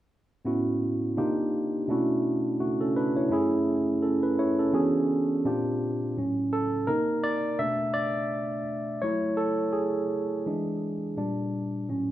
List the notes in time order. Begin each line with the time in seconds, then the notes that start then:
0.45 A2 B3 C#4 E4 F#4
1.17 C3 A#3 D4 D#4 F4 G4
1.88 B2 A3 C#4 D4 E4 F#4
2.60 A3 F#4
2.81 C#4 A4
2.96 D4 B4
3.17 E4 C#5
3.29 F#2 A3 C#4 E4
3.33 G#4
4.02 C#4 A4
4.23 B4
4.39 E4 C#5
4.59 C#4 A4
4.73 E3 B3 C#4 D4 F#4 G#4
5.45 A#2 C4 D4 F4 G4
6.17 A2 F#3 C#4
6.53 A4
6.87 C3 A#3 D#4 A#4
7.24 D5
7.59 B2 A3 D4 E5
7.94 D5
9.02 F#3 A3 E4 C#5
9.37 A4
9.73 G#4
10.46 E3 G#3 D4
11.17 A#2 G3 D4
11.88 A2 F#3 C#4